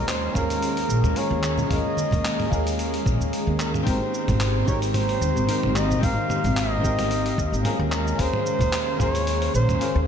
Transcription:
Already playing: D#2 D#3 G#3 A#3 C#4 F4 G#4 A#4
0.08 C5, clap, open hi-hat, cabasa
0.32 D#2 C#4 F4, kick, mid tom, cabasa
0.36 G#4 A#4
0.50 open hi-hat, cabasa
0.62 open hi-hat, cabasa
0.77 open hi-hat
0.89 A#1, cabasa
1.03 D#2, mid tom, cabasa
1.14 C#4 F4 G#4 A#4 C#5, open hi-hat, cabasa
1.30 D#2, high conga
1.43 clap, cabasa
1.58 low conga, cabasa
1.67 D#2 C#4 F4, kick, mid tom, open hi-hat
1.71 G#4 A#4 D#5, cabasa
1.97 high conga, cabasa
2.11 D#2, kick, open hi-hat, low conga, cabasa
2.25 clap, open hi-hat, cabasa
2.40 mid tom, open hi-hat
2.48 D#2 C#4 F4, kick
2.52 G#4 A#4, cabasa
2.67 open hi-hat, cabasa
2.79 open hi-hat, cabasa
2.94 open hi-hat
3.06 A#1, kick, mid tom, cabasa
3.20 D#2, cabasa
3.33 open hi-hat, cabasa
3.47 D#2, high conga
3.60 A#4, clap, cabasa
3.74 mid tom, cabasa
3.83 G#1 C4 D#4 C5, kick, open hi-hat
3.87 D#3 C4 G4 A#4, cabasa
4.14 cabasa
4.28 G#1, kick, mid tom, open hi-hat, low conga, cabasa
4.40 clap, open hi-hat, cabasa
4.65 G#1 C4 D#4 C#5, kick, cabasa
4.69 G4 A#4
4.82 open hi-hat, cabasa
4.94 C5, mid tom, open hi-hat, cabasa
5.09 open hi-hat
5.21 D#2, cabasa
5.36 G#1, cabasa
5.47 C4 D#4 G4 A#4, open hi-hat, cabasa
5.63 G#1, mid tom, high conga
5.76 D#5, clap, cabasa
5.91 low conga, cabasa
5.99 C4 D#4
6.03 G#1 G4 A#4 F5, kick, open hi-hat, cabasa
6.29 mid tom, high conga, cabasa
6.44 G#1, kick, open hi-hat, low conga, cabasa
6.56 D#5, clap, open hi-hat, cabasa
6.80 C4 D#4, kick
6.84 G#1 G4 A#4, cabasa
6.99 mid tom, open hi-hat, cabasa
7.11 open hi-hat, cabasa
7.26 open hi-hat
7.38 D#2, kick, cabasa
7.52 G#1, cabasa
7.63 C#4 F4 G#4 A#4, mid tom, open hi-hat, cabasa
7.79 D#2, high conga
7.91 D#3 A#3 C#4 G#4 A#4, clap, cabasa
8.07 cabasa
8.15 D#2 C#4 F4, kick, open hi-hat
8.20 G#4 A#4 C5, cabasa
8.33 mid tom
8.46 cabasa
8.59 D#2, kick, open hi-hat, low conga, cabasa
8.73 clap, open hi-hat, cabasa
8.97 D#2 C#4 F4, kick, mid tom, cabasa
9.01 G#4 A#4 C#5
9.15 open hi-hat, cabasa
9.27 open hi-hat, cabasa
9.42 open hi-hat
9.54 A#1 C5, cabasa
9.69 D#2, mid tom, cabasa
9.79 C#4 F4 G#4 A#4, open hi-hat, cabasa
9.95 D#2, high conga

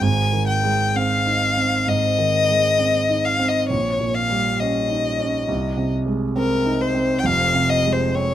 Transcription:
0.01 G#1 G#2 G#5
0.33 D#3
0.47 G5
0.64 G#3
0.95 C4 F5
1.26 D#4
1.57 C4
1.87 G#2 D#5
2.19 D#3
2.49 G#3
2.79 C4
3.09 D#4
3.25 F5
3.39 C4
3.48 D#5
3.69 A#1 C#5
3.99 A#2
4.14 F5
4.30 G3
4.60 C#4 D#5
4.90 D#4
5.19 C#4
5.48 C2
5.77 C3
6.06 G#3
6.36 C4 A#4
6.66 D#4
6.81 C5
6.95 C4
7.19 G5
7.24 F1 F2 F5
7.54 C3
7.69 D#5
7.85 G#3
7.93 C5
8.15 C4 C#5

